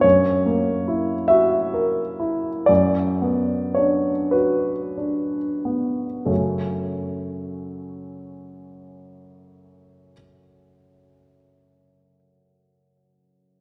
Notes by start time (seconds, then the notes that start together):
0.01 F#2 C#5
0.46 A#3
0.88 E4
1.28 F#4 E5
1.74 A#4
2.20 E4
2.66 F#2 D5
3.22 B3
3.74 D4 C#5
4.31 F#4 B4
4.98 D4
5.65 B3
6.25 F#2 C#3 A3 C#4 F#4 A4